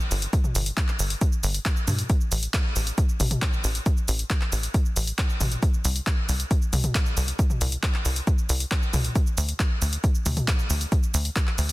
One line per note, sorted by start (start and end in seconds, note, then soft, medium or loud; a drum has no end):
0.00 shaker soft
0.11 0.27 G1 medium
0.11 open hi-hat medium
0.11 shaker medium
0.22 closed hi-hat medium
0.22 shaker soft
0.33 kick loud
0.33 closed hi-hat medium
0.33 shaker soft
0.44 mid tom medium
0.44 shaker soft
0.55 0.71 G1 loud
0.55 open hi-hat loud
0.55 shaker medium
0.66 closed hi-hat medium
0.66 shaker soft
0.77 kick loud
0.77 clap loud
0.77 closed hi-hat medium
0.77 shaker soft
0.88 clap soft
0.88 shaker soft
0.99 1.15 G1 medium
0.99 open hi-hat medium
0.99 shaker medium
1.10 closed hi-hat medium
1.10 shaker soft
1.21 kick loud
1.21 closed hi-hat medium
1.21 shaker soft
1.32 shaker soft
1.43 1.59 G1 loud
1.43 open hi-hat loud
1.43 shaker medium
1.54 closed hi-hat medium
1.54 shaker soft
1.65 kick loud
1.65 clap loud
1.65 closed hi-hat medium
1.65 shaker soft
1.77 shaker soft
1.88 2.03 G2 medium
1.88 open hi-hat medium
1.88 mid tom medium
1.88 shaker medium
1.99 closed hi-hat medium
1.99 shaker soft
2.10 kick loud
2.10 closed hi-hat medium
2.10 shaker soft
2.21 shaker soft
2.32 2.47 A1 loud
2.32 open hi-hat loud
2.32 shaker medium
2.43 closed hi-hat medium
2.43 shaker soft
2.54 kick loud
2.54 clap loud
2.54 closed hi-hat medium
2.54 shaker soft
2.76 2.92 A1 medium
2.76 open hi-hat medium
2.76 shaker medium
2.87 closed hi-hat medium
2.87 shaker soft
2.98 kick loud
2.98 closed hi-hat medium
2.98 shaker soft
3.09 shaker soft
3.20 3.36 A1 loud
3.20 open hi-hat loud
3.20 mid tom medium
3.20 shaker medium
3.31 closed hi-hat medium
3.31 mid tom medium
3.31 shaker soft
3.42 kick loud
3.42 clap loud
3.42 closed hi-hat medium
3.42 shaker soft
3.53 shaker soft
3.64 3.80 A1 medium
3.64 open hi-hat medium
3.64 shaker medium
3.75 closed hi-hat medium
3.75 shaker soft
3.86 kick loud
3.86 closed hi-hat medium
3.86 shaker soft
3.97 shaker soft
4.08 4.24 A1 loud
4.08 open hi-hat loud
4.08 shaker medium
4.19 closed hi-hat medium
4.19 shaker soft
4.30 kick loud
4.30 clap loud
4.30 closed hi-hat medium
4.30 shaker soft
4.41 clap soft
4.52 4.68 A1 medium
4.52 open hi-hat loud
4.52 shaker medium
4.63 closed hi-hat medium
4.63 shaker soft
4.74 kick loud
4.74 closed hi-hat medium
4.74 shaker soft
4.85 shaker soft
4.96 5.12 A1 loud
4.96 open hi-hat loud
4.96 shaker medium
5.07 closed hi-hat medium
5.07 shaker soft
5.18 kick loud
5.18 clap loud
5.18 closed hi-hat medium
5.18 shaker soft
5.29 shaker soft
5.41 5.56 A1 loud
5.41 open hi-hat loud
5.41 mid tom medium
5.41 shaker medium
5.52 closed hi-hat medium
5.52 shaker soft
5.63 kick loud
5.63 closed hi-hat medium
5.63 shaker soft
5.74 shaker soft
5.85 6.00 C2 loud
5.85 open hi-hat loud
5.85 shaker medium
5.96 closed hi-hat medium
5.96 shaker soft
6.07 kick loud
6.07 clap loud
6.07 closed hi-hat medium
6.07 shaker soft
6.29 6.45 C2 medium
6.29 open hi-hat loud
6.29 shaker medium
6.40 closed hi-hat medium
6.40 shaker soft
6.51 kick loud
6.51 closed hi-hat medium
6.51 shaker soft
6.62 shaker soft
6.73 6.89 C2 medium
6.73 open hi-hat loud
6.73 mid tom medium
6.73 shaker medium
6.84 closed hi-hat medium
6.84 mid tom medium
6.84 shaker soft
6.95 kick loud
6.95 clap loud
6.95 closed hi-hat medium
6.95 shaker soft
7.06 shaker soft
7.17 7.33 C2 medium
7.17 open hi-hat loud
7.17 shaker medium
7.28 closed hi-hat medium
7.28 shaker soft
7.39 kick loud
7.39 closed hi-hat medium
7.39 shaker soft
7.50 mid tom medium
7.50 shaker soft
7.61 7.77 C2 loud
7.61 open hi-hat loud
7.61 shaker medium
7.72 closed hi-hat medium
7.72 shaker soft
7.83 kick loud
7.83 clap loud
7.83 closed hi-hat medium
7.83 shaker soft
7.94 clap soft
8.05 8.21 C2 medium
8.05 open hi-hat loud
8.05 shaker medium
8.16 closed hi-hat medium
8.16 shaker soft
8.27 kick loud
8.27 closed hi-hat medium
8.27 shaker soft
8.38 shaker soft
8.49 8.65 C2 loud
8.49 open hi-hat loud
8.49 shaker medium
8.60 closed hi-hat medium
8.60 shaker soft
8.71 kick loud
8.71 clap loud
8.71 closed hi-hat medium
8.71 shaker soft
8.82 shaker soft
8.93 9.09 C2 medium
8.93 open hi-hat loud
8.93 mid tom medium
8.93 shaker medium
9.05 closed hi-hat medium
9.05 shaker soft
9.15 kick loud
9.15 closed hi-hat medium
9.15 shaker soft
9.27 shaker soft
9.38 9.53 D2 loud
9.38 open hi-hat loud
9.38 shaker medium
9.49 closed hi-hat medium
9.49 shaker soft
9.60 kick loud
9.60 clap loud
9.60 closed hi-hat medium
9.60 shaker soft
9.82 9.97 D2 medium
9.82 open hi-hat medium
9.82 shaker medium
9.93 closed hi-hat medium
9.93 shaker soft
10.04 kick loud
10.04 closed hi-hat medium
10.04 shaker soft
10.15 shaker soft
10.26 10.42 D2 loud
10.26 open hi-hat loud
10.26 mid tom medium
10.26 shaker medium
10.37 closed hi-hat medium
10.37 mid tom medium
10.37 shaker soft
10.48 kick loud
10.48 clap loud
10.48 closed hi-hat medium
10.48 shaker soft
10.59 shaker soft
10.70 10.86 D2 medium
10.70 open hi-hat loud
10.70 shaker medium
10.81 closed hi-hat medium
10.81 shaker soft
10.92 kick loud
10.92 closed hi-hat medium
10.92 shaker soft
11.03 shaker soft
11.14 11.30 D2 loud
11.14 open hi-hat loud
11.14 shaker medium
11.25 closed hi-hat medium
11.25 shaker soft
11.36 kick loud
11.36 clap loud
11.36 closed hi-hat medium
11.36 shaker soft
11.47 clap soft
11.58 11.72 D2 medium
11.58 open hi-hat medium
11.58 shaker medium